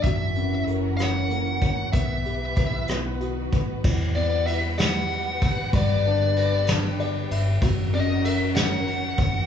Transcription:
0.03 0.63 F#1 loud
0.03 0.34 E3 medium
0.03 1.92 E3 medium
0.03 1.90 F#3 medium
0.03 1.92 C#4 medium
0.03 1.92 F#4 medium
0.03 1.92 A#4 medium
0.03 0.63 E5 loud
0.03 kick loud
0.03 closed hi-hat medium
0.35 0.97 E3 medium
0.35 1.58 C#4 soft
0.35 closed hi-hat soft
0.66 1.90 F#1 medium
0.66 1.60 C#4 medium
0.66 1.30 A#4 medium
0.66 closed hi-hat soft
0.97 1.92 E3 medium
0.97 1.61 C#5 soft
0.97 1.89 F#5 medium
0.97 cross-stick medium
0.97 closed hi-hat medium
1.30 1.99 A#3 medium
1.30 1.92 A#4 medium
1.30 closed hi-hat soft
1.61 2.00 C#4 medium
1.61 1.93 C#5 soft
1.61 kick medium
1.61 closed hi-hat medium
1.92 2.53 B1 loud
1.92 2.88 E3 medium
1.92 2.24 G3 medium
1.92 2.86 B3 medium
1.92 3.83 B3 medium
1.92 2.88 G4 medium
1.92 3.83 B4 medium
1.92 2.85 E5 medium
1.92 kick loud
1.92 closed hi-hat medium
2.25 2.88 G3 medium
2.25 2.87 G4 soft
2.25 closed hi-hat soft
2.56 2.87 B1 loud
2.56 2.95 E4 medium
2.56 2.88 B4 medium
2.56 kick medium
2.56 closed hi-hat soft
2.88 3.48 B1 medium
2.88 3.84 D#3 medium
2.88 3.91 F#3 medium
2.88 3.82 B3 medium
2.88 3.84 F#4 medium
2.88 cross-stick loud
2.88 closed hi-hat medium
3.20 4.41 B3 medium
3.20 3.82 F#4 medium
3.20 closed hi-hat soft
3.52 3.91 D#4 medium
3.52 3.84 B4 soft
3.52 kick medium
3.52 closed hi-hat medium
3.84 5.42 E2 loud
3.84 5.70 E3 medium
3.84 5.72 E3 medium
3.84 5.72 G3 medium
3.84 7.59 B4 medium
3.84 5.72 F#5 medium
3.84 kick loud
3.84 crash medium
4.15 5.39 B3 medium
4.15 4.45 D5 medium
4.15 ride soft
4.47 5.70 E4 medium
4.47 4.55 E5 medium
4.47 ride medium
4.78 5.70 G4 medium
4.78 5.70 F#5 loud
4.78 snare loud
4.78 ride medium
5.11 ride soft
5.42 5.72 D2 medium
5.42 kick medium
5.42 ride medium
5.73 7.27 G1 loud
5.73 7.60 D3 medium
5.73 7.58 G3 medium
5.73 7.61 B3 medium
5.73 7.61 G4 medium
5.73 6.65 D5 medium
5.73 kick loud
5.73 ride medium
6.05 6.67 D4 medium
6.05 ride soft
6.36 7.59 B4 medium
6.36 ride medium
6.67 7.59 D4 medium
6.67 snare loud
6.67 ride medium
7.00 7.29 D5 medium
7.00 ride soft
7.31 7.60 G1 loud
7.31 7.60 E5 medium
7.31 ride medium
7.61 9.46 E3 medium
7.61 9.46 F#3 medium
7.61 9.46 C#4 medium
7.61 9.46 F#4 medium
7.61 9.46 A#4 medium
7.61 kick loud
7.61 ride medium
7.94 9.15 C#4 medium
7.94 8.25 D#5 medium
7.94 ride soft
8.25 9.46 A#4 medium
8.25 8.34 E5 loud
8.25 ride medium
8.54 9.46 C#5 medium
8.54 9.46 F#5 loud
8.54 snare loud
8.54 ride medium
8.87 ride soft
9.18 9.46 F#1 loud
9.18 kick medium
9.18 ride medium

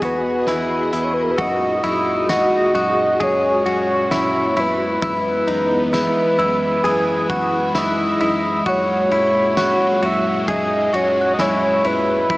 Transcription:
0.00 0.42 E2 medium
0.00 1.37 E3 medium
0.00 1.35 B3 medium
0.00 1.37 F#4 medium
0.00 0.47 F#4 medium
0.00 1.37 G#4 medium
0.00 1.37 D#5 medium
0.00 kick medium
0.00 closed hi-hat soft
0.05 1.06 B4 medium
0.47 0.88 E2 medium
0.47 0.92 E4 medium
0.47 1.80 G#5 medium
0.47 snare medium
0.47 closed hi-hat medium
0.93 1.33 E2 medium
0.93 1.38 E4 medium
0.93 closed hi-hat soft
1.04 1.15 C#5 medium
1.13 1.24 B4 medium
1.23 1.33 A#4 medium
1.31 1.40 B4 medium
1.38 1.79 F#2 medium
1.38 4.99 A#2 medium
1.38 4.99 G#3 medium
1.38 1.83 F#4 medium
1.38 4.99 F#4 medium
1.38 3.25 D#5 loud
1.38 2.79 C#6 medium
1.38 kick loud
1.38 ride medium
1.84 2.44 F#2 loud
1.84 2.29 E4 medium
1.84 ride soft
2.29 2.74 F#4 medium
2.29 snare loud
2.29 ride medium
2.29 tambourine medium
2.75 3.15 F#2 loud
2.75 3.20 F#4 medium
2.75 ride soft
3.20 3.60 F#2 medium
3.20 3.65 G#4 medium
3.20 4.61 C#5 loud
3.20 kick medium
3.20 ride medium
3.66 4.06 F#2 medium
3.66 4.11 F#4 medium
3.66 ride soft
4.11 4.51 F#2 loud
4.11 4.56 E4 medium
4.11 snare medium
4.11 ride medium
4.11 tambourine medium
4.57 4.97 F#2 medium
4.57 5.01 E4 medium
4.57 7.79 B4 loud
4.57 ride soft
5.02 5.42 F#2 loud
5.02 8.62 E3 medium
5.02 12.38 G#3 medium
5.02 6.82 B3 medium
5.02 5.48 E4 loud
5.02 kick loud
5.02 ride medium
5.47 6.08 F#2 medium
5.47 5.93 D#4 medium
5.47 ride soft
5.93 6.38 E4 medium
5.93 snare loud
5.93 ride medium
5.93 tambourine medium
6.39 6.79 F#2 medium
6.39 6.84 E4 medium
6.39 7.79 E6 medium
6.39 ride soft
6.84 7.24 F#2 medium
6.84 8.65 E4 medium
6.84 7.29 G#4 medium
6.84 ride medium
7.30 7.70 F#2 medium
7.30 7.75 F#4 medium
7.30 kick medium
7.30 ride soft
7.75 8.15 F#2 loud
7.75 8.19 E4 medium
7.75 8.70 D#5 loud
7.75 snare loud
7.75 ride medium
7.75 tambourine medium
8.21 8.61 F#2 medium
8.21 8.66 E4 medium
8.21 ride soft
8.66 9.06 F#2 loud
8.66 12.26 A#2 medium
8.66 12.26 F#3 medium
8.66 9.12 F#4 loud
8.66 10.04 C#5 loud
8.66 kick loud
8.66 ride medium
9.11 9.72 F#2 loud
9.11 9.57 E4 medium
9.11 ride soft
9.57 10.01 F#4 medium
9.57 snare loud
9.57 ride medium
9.57 tambourine medium
10.03 10.42 F#2 medium
10.03 10.48 F#4 medium
10.03 10.52 E5 loud
10.03 ride soft
10.48 10.88 F#2 medium
10.48 10.93 G#4 medium
10.48 10.97 D#5 loud
10.48 kick medium
10.48 ride medium
10.93 11.33 F#2 medium
10.93 11.39 F#4 medium
10.93 11.33 C#5 loud
10.93 12.33 C#6 medium
10.93 ride soft
11.21 12.38 F#6 medium
11.34 11.43 D#5 medium
11.39 11.79 F#2 loud
11.39 11.84 E4 medium
11.39 11.88 C#5 medium
11.39 12.38 G#5 medium
11.39 snare loud
11.39 ride medium
11.39 tambourine medium
11.84 12.25 F#2 medium
11.84 12.29 E4 medium
11.84 12.38 B4 loud
11.84 ride soft
12.30 12.38 F#2 loud
12.30 12.38 E3 medium
12.30 12.38 E4 medium
12.30 12.38 D#5 medium
12.30 kick loud
12.30 ride medium

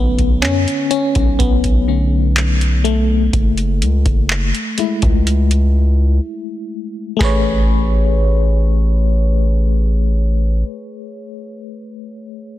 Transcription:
0.00 0.44 B1 loud
0.00 0.10 D3 medium
0.00 0.11 A3 medium
0.00 0.44 B3 loud
0.00 0.11 C#4 medium
0.19 kick medium
0.19 closed hi-hat medium
0.42 0.66 F#2 loud
0.42 0.89 C#4 loud
0.42 clap loud
0.42 closed hi-hat medium
0.68 closed hi-hat medium
0.91 1.41 C#4 loud
0.91 closed hi-hat medium
1.15 3.30 B1 loud
1.15 kick medium
1.15 closed hi-hat soft
1.39 2.89 B3 loud
1.39 kick loud
1.39 closed hi-hat medium
1.64 kick medium
1.64 closed hi-hat medium
1.88 2.33 D3 medium
1.88 2.33 A3 soft
1.88 2.33 C#4 medium
2.36 clap loud
2.36 closed hi-hat medium
2.61 closed hi-hat soft
2.84 4.26 A3 medium
2.84 closed hi-hat medium
3.33 3.83 F#1 loud
3.33 kick loud
3.33 closed hi-hat medium
3.58 closed hi-hat medium
3.82 4.05 C#2 loud
3.82 closed hi-hat medium
4.06 4.52 F#1 loud
4.06 kick medium
4.06 closed hi-hat soft
4.29 clap loud
4.29 closed hi-hat medium
4.55 closed hi-hat medium
4.78 6.20 G#3 medium
4.78 6.20 A3 medium
4.78 6.20 E4 medium
4.78 closed hi-hat medium
5.02 6.20 C#2 loud
5.02 kick medium
5.02 closed hi-hat soft
5.27 closed hi-hat medium
5.51 closed hi-hat medium
7.17 10.63 A1 loud
7.17 10.60 A3 medium
7.17 10.62 G#4 medium
7.17 kick loud
7.17 snare loud
7.22 10.65 B4 medium
7.22 10.67 C#5 loud

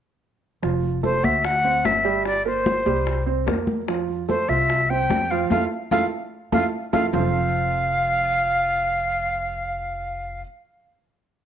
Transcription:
0.62 1.20 F1 medium
0.62 0.96 F3 medium
0.62 0.96 F4 medium
0.62 high bongo medium
0.62 high conga soft
0.83 high bongo soft
0.83 high conga soft
1.03 1.20 A3 medium
1.03 1.20 A4 medium
1.03 1.26 C5 medium
1.03 high bongo medium
1.03 high conga medium
1.23 1.81 D2 medium
1.23 1.57 F#4 medium
1.23 1.46 E5 medium
1.23 1.57 F#5 medium
1.23 high conga soft
1.44 1.87 F#5 loud
1.44 high bongo medium
1.44 high conga soft
1.64 1.98 C4 medium
1.64 1.98 C5 medium
1.64 high bongo soft
1.64 high conga soft
1.85 2.80 G1 medium
1.85 2.26 E5 medium
1.85 high bongo medium
1.85 low bongo medium
1.85 high conga medium
2.05 2.38 G3 medium
2.05 2.38 G4 medium
2.05 high bongo soft
2.25 2.45 D5 medium
2.25 high bongo medium
2.25 high conga soft
2.45 2.79 A#3 medium
2.45 2.79 A#4 medium
2.45 3.24 C5 medium
2.45 high bongo soft
2.45 high conga soft
2.66 high bongo medium
2.66 high conga loud
2.86 3.43 C2 medium
2.86 3.20 G3 medium
2.86 3.20 G4 medium
2.86 high bongo soft
3.06 high bongo medium
3.06 high conga soft
3.26 3.43 C4 medium
3.26 3.44 C5 medium
3.26 high bongo soft
3.26 high conga soft
3.46 4.43 F2 medium
3.46 3.80 A#3 medium
3.46 3.81 A#4 medium
3.46 high bongo medium
3.46 low bongo medium
3.46 high conga medium
3.67 high conga medium
3.88 4.21 F3 medium
3.88 4.22 F4 medium
3.88 high bongo medium
3.88 high conga soft
4.08 high bongo soft
4.08 high conga soft
4.29 4.45 A3 medium
4.29 4.45 A4 medium
4.29 4.50 C5 medium
4.29 high bongo soft
4.29 high conga medium
4.49 5.06 C2 medium
4.49 4.82 F4 medium
4.49 4.91 E5 medium
4.49 4.83 E5 medium
4.49 high conga soft
4.70 high bongo medium
4.70 high conga soft
4.90 5.24 C4 medium
4.90 5.24 C5 medium
4.90 5.32 G5 loud
4.90 high bongo soft
4.90 high conga soft
5.10 5.48 F2 medium
5.10 high bongo medium
5.10 low bongo medium
5.10 high conga medium
5.31 5.48 F3 medium
5.31 5.48 F4 medium
5.31 5.50 F5 medium
5.31 high bongo soft
5.50 5.66 F2 medium
5.50 5.65 E4 medium
5.50 5.65 F4 medium
5.50 5.65 A4 medium
5.50 5.64 F5 loud
5.50 low bongo medium
5.50 high conga medium
5.91 6.07 F2 medium
5.91 6.05 E4 medium
5.91 6.05 F4 medium
5.91 6.05 A4 medium
5.91 6.05 F5 loud
5.91 low bongo medium
5.91 high conga medium
6.52 6.68 F2 medium
6.52 6.66 E4 medium
6.52 6.66 F4 medium
6.52 6.66 A4 medium
6.52 6.66 F5 medium
6.52 low bongo medium
6.52 high conga medium
6.93 7.09 F2 medium
6.93 7.06 E4 medium
6.93 7.06 F4 medium
6.93 7.06 A4 medium
6.93 7.06 F5 medium
6.93 low bongo medium
6.93 high conga medium
7.13 10.41 F1 medium
7.13 10.40 F3 medium
7.13 10.41 C4 medium
7.13 10.41 F4 medium
7.13 10.41 A4 medium
7.13 10.41 C5 medium
7.13 10.41 F5 medium
7.13 low bongo medium
7.13 low conga medium

